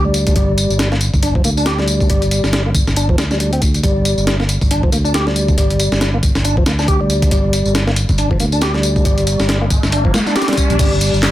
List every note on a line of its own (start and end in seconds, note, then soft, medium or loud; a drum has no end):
0.00 0.33 D2 medium
0.05 0.35 G3 medium
0.14 closed hi-hat medium
0.14 tambourine medium
0.27 kick loud
0.27 closed hi-hat medium
0.27 tambourine soft
0.36 0.66 G1 loud
0.36 0.78 G3 medium
0.36 kick loud
0.36 closed hi-hat medium
0.36 tambourine soft
0.58 closed hi-hat medium
0.58 tambourine medium
0.70 1.09 G1 medium
0.70 tambourine soft
0.79 0.89 G3 medium
0.79 snare loud
0.79 closed hi-hat medium
0.79 tambourine soft
0.92 0.96 A#3 loud
0.92 snare soft
1.01 closed hi-hat medium
1.01 tambourine medium
1.13 1.41 G1 medium
1.13 kick medium
1.13 tambourine soft
1.23 1.34 D4 medium
1.23 closed hi-hat medium
1.23 tambourine soft
1.35 1.42 F3 medium
1.35 kick loud
1.44 2.07 D2 medium
1.44 1.50 A#3 medium
1.44 closed hi-hat medium
1.44 tambourine medium
1.57 1.65 D4 loud
1.57 tambourine soft
1.66 1.78 G4 loud
1.66 snare loud
1.66 closed hi-hat medium
1.79 2.09 G3 medium
1.79 snare soft
1.88 closed hi-hat medium
1.88 tambourine medium
2.00 kick medium
2.00 tambourine soft
2.10 2.40 G1 loud
2.10 2.52 G3 medium
2.10 kick loud
2.10 closed hi-hat medium
2.10 tambourine soft
2.22 closed hi-hat soft
2.22 tambourine soft
2.31 closed hi-hat medium
2.31 tambourine medium
2.44 2.83 G1 medium
2.44 snare soft
2.44 tambourine soft
2.53 2.62 G3 medium
2.53 snare loud
2.53 closed hi-hat medium
2.53 tambourine soft
2.66 2.70 A#3 loud
2.75 kick loud
2.75 closed hi-hat medium
2.75 tambourine medium
2.87 3.15 G1 medium
2.87 snare soft
2.87 tambourine soft
2.96 3.08 D4 medium
2.96 closed hi-hat medium
2.96 tambourine soft
3.09 3.16 F3 medium
3.09 kick loud
3.18 3.80 D2 medium
3.18 3.24 G3 medium
3.18 snare loud
3.18 closed hi-hat medium
3.18 tambourine medium
3.31 3.38 G3 medium
3.31 snare soft
3.31 tambourine soft
3.40 3.52 G3 medium
3.40 closed hi-hat medium
3.40 tambourine soft
3.53 3.61 C4 medium
3.53 closed hi-hat soft
3.62 kick medium
3.62 closed hi-hat medium
3.62 tambourine medium
3.74 closed hi-hat soft
3.74 tambourine soft
3.83 4.14 G1 loud
3.83 4.26 G3 medium
3.83 kick loud
3.83 closed hi-hat medium
3.83 tambourine soft
4.05 closed hi-hat medium
4.05 tambourine medium
4.18 4.57 G1 medium
4.18 tambourine soft
4.27 4.36 G3 medium
4.27 snare loud
4.27 closed hi-hat medium
4.27 tambourine soft
4.40 4.44 A#3 loud
4.40 snare soft
4.49 closed hi-hat medium
4.49 tambourine medium
4.61 4.89 G1 medium
4.61 kick medium
4.61 tambourine soft
4.71 4.82 D4 medium
4.71 closed hi-hat medium
4.71 tambourine soft
4.83 4.90 F3 medium
4.83 kick loud
4.92 5.54 D2 medium
4.92 4.98 A#3 medium
4.92 closed hi-hat medium
4.92 tambourine medium
5.05 5.13 D4 medium
5.05 tambourine soft
5.14 5.26 G4 medium
5.14 snare loud
5.14 closed hi-hat medium
5.14 tambourine soft
5.27 5.57 G3 medium
5.27 snare soft
5.36 closed hi-hat medium
5.36 tambourine medium
5.48 kick medium
5.48 tambourine soft
5.58 5.88 G1 medium
5.58 6.00 G3 medium
5.58 kick loud
5.58 closed hi-hat medium
5.58 tambourine soft
5.70 closed hi-hat soft
5.79 closed hi-hat medium
5.79 tambourine medium
5.92 6.31 G1 medium
5.92 snare medium
5.92 tambourine soft
6.01 6.10 G3 medium
6.01 snare loud
6.01 closed hi-hat medium
6.01 tambourine soft
6.14 6.18 A#3 loud
6.23 kick loud
6.23 closed hi-hat medium
6.23 tambourine medium
6.35 6.63 G1 medium
6.35 snare medium
6.35 tambourine soft
6.44 6.56 D4 medium
6.44 closed hi-hat medium
6.44 tambourine soft
6.57 6.64 F3 medium
6.57 kick loud
6.66 7.28 D2 medium
6.66 6.72 A#3 medium
6.66 snare loud
6.66 closed hi-hat medium
6.66 tambourine medium
6.79 6.87 D4 medium
6.79 snare soft
6.79 tambourine soft
6.88 7.00 G4 loud
6.88 kick loud
6.88 closed hi-hat medium
6.88 tambourine soft
7.01 7.31 G3 medium
7.10 closed hi-hat medium
7.10 tambourine medium
7.22 kick loud
7.22 closed hi-hat medium
7.22 tambourine soft
7.31 7.62 G1 loud
7.31 7.74 G3 medium
7.31 kick loud
7.31 closed hi-hat medium
7.31 tambourine soft
7.31 riser medium
7.53 closed hi-hat medium
7.53 tambourine medium
7.65 8.05 G1 medium
7.65 tambourine soft
7.75 7.84 G3 medium
7.75 snare loud
7.75 closed hi-hat medium
7.75 tambourine soft
7.87 7.91 A#3 loud
7.87 snare soft
7.96 closed hi-hat medium
7.96 tambourine medium
8.09 8.37 G1 medium
8.09 kick medium
8.09 tambourine soft
8.18 8.30 D4 medium
8.18 closed hi-hat medium
8.18 tambourine soft
8.31 8.38 F3 medium
8.31 kick medium
8.40 9.02 D2 medium
8.40 8.46 A#3 medium
8.40 closed hi-hat medium
8.40 tambourine medium
8.52 8.61 D4 loud
8.52 tambourine soft
8.61 8.74 G4 loud
8.61 snare loud
8.61 closed hi-hat medium
8.61 tambourine soft
8.74 9.05 G3 medium
8.74 snare soft
8.83 closed hi-hat medium
8.83 tambourine medium
8.96 kick medium
8.96 tambourine soft
9.05 9.35 G1 loud
9.05 9.48 G3 medium
9.05 kick loud
9.05 closed hi-hat medium
9.05 tambourine soft
9.18 closed hi-hat soft
9.18 tambourine soft
9.27 closed hi-hat medium
9.27 tambourine medium
9.39 9.79 G1 medium
9.39 snare medium
9.39 tambourine soft
9.49 9.58 G3 medium
9.49 snare loud
9.49 closed hi-hat medium
9.49 tambourine soft
9.61 9.65 A#3 loud
9.70 kick loud
9.70 closed hi-hat medium
9.70 tambourine medium
9.83 10.11 G1 medium
9.83 snare medium
9.83 tambourine soft
9.92 10.04 D4 medium
9.92 closed hi-hat medium
9.92 tambourine soft
10.05 10.12 F3 medium
10.05 kick loud
10.14 10.20 A#3 medium
10.14 snare loud
10.14 closed hi-hat medium
10.14 tambourine medium
10.26 10.35 D4 loud
10.26 snare soft
10.26 tambourine soft
10.36 10.48 G4 loud
10.36 snare medium
10.36 closed hi-hat medium
10.36 tambourine soft
10.42 snare medium
10.42 closed hi-hat medium
10.48 10.79 G3 medium
10.48 snare medium
10.48 closed hi-hat medium
10.53 snare medium
10.53 closed hi-hat medium
10.57 kick loud
10.57 closed hi-hat medium
10.57 tambourine medium
10.70 10.77 A#1 medium
10.70 closed hi-hat soft
10.70 tambourine soft
10.79 11.09 G1 loud
10.79 11.22 G3 medium
10.79 kick loud
10.79 closed hi-hat medium
10.79 crash loud
10.79 tambourine soft
11.01 closed hi-hat medium
11.01 ride medium
11.01 tambourine medium
11.13 11.31 G1 medium
11.13 tambourine soft
11.23 11.31 G3 medium
11.23 snare loud
11.23 clap loud
11.23 closed hi-hat medium
11.23 tambourine soft